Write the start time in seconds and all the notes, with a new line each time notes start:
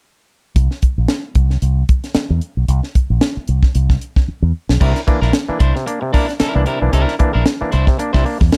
0.56 C2, kick, closed hi-hat
0.71 snare
0.82 kick, closed hi-hat
0.98 A#1
1.08 snare, closed hi-hat
1.35 C2, kick, closed hi-hat
1.50 snare
1.62 C2, closed hi-hat
1.89 kick, closed hi-hat
2.04 snare, closed hi-hat
2.14 muted fingered electric bass stroke, snare, closed hi-hat
2.30 E2
2.41 closed hi-hat
2.57 B1
2.68 C2, closed hi-hat
2.83 snare
2.95 kick, closed hi-hat
3.10 A#1
3.21 snare, closed hi-hat
3.37 muted fingered electric bass stroke
3.48 C2, closed hi-hat
3.63 kick, snare
3.75 C2, closed hi-hat
3.90 kick, snare
4.01 closed hi-hat
4.16 kick, snare
4.28 muted fingered electric bass stroke
4.42 E2
4.69 B1, snare
4.81 C2 C3 D4 E4 A#4, kick, crash
4.96 snare, closed hi-hat
5.07 E3 A#3 D4, muted clean electric guitar stroke, kick, closed hi-hat
5.22 A#1 A#3 D4 E4 A#4, snare
5.33 snare, closed hi-hat
5.49 E3 A#3 D4, muted fingered electric bass stroke
5.59 C2 D4 E4 C5, kick, closed hi-hat
5.75 C3, muted clean electric guitar stroke, snare
5.86 A#3 D4, muted clean electric guitar stroke, closed hi-hat
6.01 C3, muted clean electric guitar stroke
6.13 A#3 D4 E4 A#4, kick, open hi-hat
6.28 muted clean electric guitar stroke, snare, closed hi-hat
6.40 D4 E4 A#4, muted fingered electric bass stroke, snare, closed hi-hat
6.55 C2 E3 A#3 D4, muted clean electric guitar stroke
6.66 C3 D4 E4 A#4, closed hi-hat
6.80 B1 E3 A#3 D4, muted clean electric guitar stroke
6.93 C2 C3 D4 E4 A#4, closed hi-hat
7.08 snare
7.19 E3 A#3 D4, muted clean electric guitar stroke, kick, closed hi-hat
7.33 A#1 A#3 D4 E4 A#4
7.45 muted clean electric guitar stroke, snare, closed hi-hat
7.61 E3 A#3 D4, muted fingered electric bass stroke
7.72 C2 D4 E4 C5, closed hi-hat
7.87 C3, muted clean electric guitar stroke, kick, snare
7.99 A#3 D4, muted clean electric guitar stroke, closed hi-hat
8.13 C2 C3 D4 E4 C5, kick, snare
8.25 A#3 D4, open hi-hat
8.41 E2, muted clean electric guitar stroke, kick, snare
8.52 muted clean electric guitar stroke, muted fingered electric bass stroke, snare, closed hi-hat